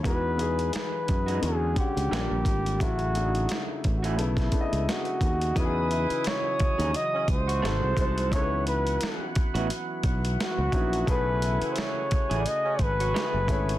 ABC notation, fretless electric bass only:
X:1
M:4/4
L:1/16
Q:"Swing 16ths" 1/4=87
K:E
V:1 name="Fretless electric bass" clef=bass
E,,4 z2 F,,2 E,,2 z C,, ^A,,, A,,, G,,,2 | A,,,4 z2 A,,,2 B,,,2 z C,, z2 D,,2 | E,,3 z4 D,, z2 C,,2 G,,, ^B,,, B,,,2 | C,,4 z3 A,,, z2 B,,,2 z C,, ^A,,,2 |
B,,,3 z4 A,,, z2 G,,,2 z F,,, G,,,2 |]